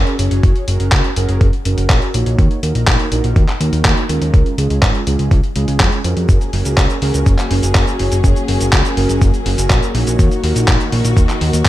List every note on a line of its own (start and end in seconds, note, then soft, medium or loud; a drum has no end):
0.00 0.16 C#4 medium
0.00 0.16 F#4 medium
0.00 0.16 G#4 medium
0.00 0.16 A#4 medium
0.07 closed hi-hat soft
0.19 0.29 F#1 medium
0.19 0.65 C#4 medium
0.19 0.65 F#4 medium
0.19 0.65 G#4 medium
0.19 0.65 C#5 loud
0.19 closed hi-hat medium
0.31 0.41 F#1 medium
0.31 closed hi-hat medium
0.43 0.53 F#1 loud
0.43 kick loud
0.43 closed hi-hat medium
0.56 closed hi-hat soft
0.68 0.78 F#1 medium
0.68 1.14 C#4 medium
0.68 1.14 F#4 medium
0.68 1.14 G#4 medium
0.68 1.14 A#4 medium
0.68 closed hi-hat medium
0.80 0.90 F#1 medium
0.80 closed hi-hat medium
0.92 1.02 C#2 loud
0.92 kick loud
0.92 clap loud
0.92 closed hi-hat medium
1.04 closed hi-hat soft
1.16 1.27 F#1 medium
1.16 1.47 C#4 loud
1.16 1.47 F#4 medium
1.16 1.47 G#4 medium
1.16 1.47 A#4 loud
1.16 closed hi-hat medium
1.29 1.39 F#1 medium
1.29 closed hi-hat medium
1.41 1.51 F#1 loud
1.41 kick loud
1.41 closed hi-hat medium
1.53 closed hi-hat soft
1.65 1.75 F#1 medium
1.65 2.11 C#4 medium
1.65 2.11 F#4 medium
1.65 2.11 G#4 medium
1.65 2.11 A#4 loud
1.65 closed hi-hat medium
1.78 1.88 F#1 medium
1.78 closed hi-hat medium
1.90 2.00 A#1 loud
1.90 kick loud
1.90 clap loud
1.90 closed hi-hat medium
2.02 closed hi-hat soft
2.14 2.24 A#1 medium
2.14 2.60 A#3 medium
2.14 2.60 D#4 medium
2.14 2.60 F#4 medium
2.14 2.60 C#5 loud
2.14 closed hi-hat medium
2.26 2.36 A#1 medium
2.26 closed hi-hat medium
2.39 2.49 D#2 loud
2.39 kick loud
2.39 closed hi-hat soft
2.51 closed hi-hat soft
2.63 2.73 D#2 medium
2.63 3.09 A#3 medium
2.63 3.09 D#4 medium
2.63 3.09 F#4 medium
2.63 3.09 A#4 loud
2.63 closed hi-hat medium
2.75 2.85 A#1 medium
2.75 closed hi-hat soft
2.87 2.97 A#1 loud
2.87 kick loud
2.87 clap loud
2.87 closed hi-hat soft
3.00 closed hi-hat soft
3.12 3.22 A#1 medium
3.12 3.42 A#3 loud
3.12 3.42 D#4 medium
3.12 3.42 F#4 medium
3.12 3.42 A#4 loud
3.12 closed hi-hat medium
3.24 3.34 A#1 medium
3.24 closed hi-hat soft
3.36 3.46 D#2 loud
3.36 kick loud
3.36 closed hi-hat soft
3.48 clap soft
3.48 closed hi-hat soft
3.60 3.71 D#2 medium
3.60 4.06 A#3 medium
3.60 4.06 D#4 medium
3.60 4.06 F#4 medium
3.60 4.06 A#4 loud
3.60 closed hi-hat medium
3.73 3.83 D#2 medium
3.73 closed hi-hat medium
3.85 3.95 D#2 loud
3.85 kick loud
3.85 clap loud
3.85 closed hi-hat medium
3.97 closed hi-hat soft
4.09 4.19 D#2 medium
4.09 4.55 G#3 medium
4.09 4.55 C#4 medium
4.09 4.55 F4 medium
4.09 4.55 A#4 loud
4.09 closed hi-hat medium
4.22 4.32 D#2 medium
4.22 closed hi-hat soft
4.34 4.44 C#2 loud
4.34 kick loud
4.34 closed hi-hat soft
4.46 closed hi-hat soft
4.58 4.68 C#2 medium
4.58 5.04 G#3 medium
4.58 5.04 C#4 medium
4.58 5.04 F4 medium
4.58 5.04 G#4 medium
4.58 closed hi-hat medium
4.70 4.80 C#2 medium
4.70 closed hi-hat soft
4.82 4.92 G#1 loud
4.82 kick loud
4.82 clap loud
4.82 closed hi-hat soft
4.95 closed hi-hat soft
5.07 5.17 C#2 loud
5.07 5.37 G#3 loud
5.07 5.37 C#4 medium
5.07 5.37 F4 medium
5.07 5.37 G#4 loud
5.07 closed hi-hat medium
5.19 5.29 C#2 medium
5.19 closed hi-hat soft
5.31 5.41 C#2 loud
5.31 kick loud
5.31 closed hi-hat soft
5.44 closed hi-hat soft
5.56 5.66 C#2 medium
5.56 6.02 G#3 medium
5.56 6.02 C#4 medium
5.56 6.02 F4 medium
5.56 6.02 G#4 loud
5.56 closed hi-hat medium
5.68 5.78 C#2 medium
5.68 closed hi-hat soft
5.80 5.90 F2 loud
5.80 kick loud
5.80 clap loud
5.80 closed hi-hat soft
5.92 closed hi-hat soft
6.04 6.14 F2 medium
6.04 6.50 C#4 medium
6.04 6.50 F#4 medium
6.04 6.50 G#4 medium
6.04 6.50 A#4 medium
6.04 closed hi-hat medium
6.17 6.27 F2 medium
6.17 closed hi-hat soft
6.29 6.39 F#1 loud
6.29 11.69 F#3 medium
6.29 11.69 A#3 medium
6.29 10.15 C#4 medium
6.29 10.15 G#4 medium
6.29 kick loud
6.29 closed hi-hat soft
6.29 cabasa medium
6.41 closed hi-hat soft
6.41 cabasa soft
6.53 6.63 F#1 medium
6.53 6.99 C#4 medium
6.53 6.99 F#4 medium
6.53 6.99 G#4 medium
6.53 6.99 A#4 medium
6.53 open hi-hat loud
6.65 6.76 C#2 medium
6.65 closed hi-hat soft
6.65 cabasa medium
6.78 6.88 C#2 loud
6.78 kick loud
6.78 clap loud
6.78 closed hi-hat soft
6.78 cabasa soft
6.90 closed hi-hat soft
6.90 cabasa soft
7.02 7.12 C#2 loud
7.02 7.33 C#4 loud
7.02 7.33 F#4 medium
7.02 7.33 G#4 medium
7.02 7.33 A#4 loud
7.02 open hi-hat loud
7.14 7.24 C#2 medium
7.14 closed hi-hat soft
7.14 cabasa medium
7.26 7.36 F#1 loud
7.26 kick loud
7.26 closed hi-hat medium
7.26 cabasa medium
7.38 clap soft
7.38 closed hi-hat soft
7.38 cabasa soft
7.51 7.61 F#1 medium
7.51 7.97 C#4 medium
7.51 7.97 F#4 medium
7.51 7.97 G#4 medium
7.51 7.97 A#4 loud
7.51 open hi-hat loud
7.63 7.73 F#1 medium
7.63 closed hi-hat soft
7.63 cabasa medium
7.75 7.85 F#1 loud
7.75 kick loud
7.75 clap loud
7.75 open hi-hat medium
7.75 cabasa medium
7.87 closed hi-hat soft
7.87 cabasa soft
7.99 8.10 F#1 medium
7.99 8.45 C#4 medium
7.99 8.45 F#4 medium
7.99 8.45 G#4 medium
7.99 8.45 C#5 medium
7.99 open hi-hat loud
8.12 8.22 F#1 medium
8.12 closed hi-hat soft
8.12 cabasa medium
8.24 8.34 F#1 loud
8.24 kick loud
8.24 closed hi-hat soft
8.24 cabasa soft
8.36 closed hi-hat soft
8.36 cabasa soft
8.48 8.59 F#1 medium
8.48 8.94 C#4 medium
8.48 8.94 F#4 medium
8.48 8.94 G#4 medium
8.48 8.94 A#4 medium
8.48 open hi-hat loud
8.61 8.71 F#1 medium
8.61 closed hi-hat medium
8.61 cabasa medium
8.73 8.83 C#2 loud
8.73 kick loud
8.73 clap loud
8.73 closed hi-hat soft
8.73 cabasa medium
8.85 closed hi-hat soft
8.85 cabasa soft
8.97 9.07 F#1 loud
8.97 9.28 C#4 loud
8.97 9.28 F#4 medium
8.97 9.28 G#4 medium
8.97 9.28 A#4 loud
8.97 open hi-hat loud
9.09 9.19 F#1 medium
9.09 closed hi-hat soft
9.09 cabasa medium
9.21 9.32 F#1 loud
9.21 kick loud
9.21 closed hi-hat medium
9.21 cabasa medium
9.34 closed hi-hat soft
9.34 cabasa soft
9.46 9.56 F#1 medium
9.46 9.92 C#4 medium
9.46 9.92 F#4 medium
9.46 9.92 G#4 medium
9.46 9.92 A#4 medium
9.46 open hi-hat loud
9.58 9.68 F#1 medium
9.58 closed hi-hat medium
9.58 cabasa medium
9.70 9.80 A#1 loud
9.70 kick loud
9.70 clap loud
9.70 closed hi-hat medium
9.70 cabasa medium
9.83 closed hi-hat soft
9.83 cabasa soft
9.95 10.05 A#1 medium
9.95 10.41 A#3 medium
9.95 10.40 D#4 medium
9.95 10.41 F#4 medium
9.95 10.41 C#5 medium
9.95 open hi-hat loud
10.07 10.17 A#1 medium
10.07 closed hi-hat soft
10.07 cabasa medium
10.19 10.29 D#2 loud
10.19 11.69 D#3 medium
10.19 11.69 F#4 medium
10.19 kick loud
10.19 closed hi-hat medium
10.19 cabasa soft
10.31 closed hi-hat soft
10.31 cabasa soft
10.43 10.54 D#2 medium
10.43 10.89 A#3 medium
10.43 10.89 D#4 medium
10.43 10.89 F#4 medium
10.43 10.89 A#4 medium
10.43 open hi-hat loud
10.56 10.66 A#1 medium
10.56 closed hi-hat medium
10.56 cabasa medium
10.68 10.78 A#1 loud
10.68 kick loud
10.68 clap loud
10.68 closed hi-hat medium
10.68 cabasa soft
10.80 closed hi-hat soft
10.80 cabasa soft
10.92 11.02 A#1 medium
10.92 11.23 A#3 loud
10.92 11.23 D#4 medium
10.92 11.23 F#4 medium
10.92 11.23 A#4 loud
10.92 open hi-hat loud
11.05 11.15 A#1 medium
11.05 closed hi-hat medium
11.05 cabasa medium
11.17 11.27 D#2 loud
11.17 kick loud
11.17 closed hi-hat medium
11.17 cabasa medium
11.29 clap soft
11.29 closed hi-hat soft
11.29 cabasa soft
11.41 11.51 D#2 loud
11.41 11.69 A#3 medium
11.41 11.69 D#4 medium
11.41 11.69 F#4 medium
11.41 11.69 A#4 loud
11.41 open hi-hat loud
11.53 11.63 D#2 medium
11.53 closed hi-hat medium
11.53 cabasa medium
11.65 11.69 D#2 loud
11.65 kick loud
11.65 clap loud
11.65 open hi-hat medium
11.65 cabasa soft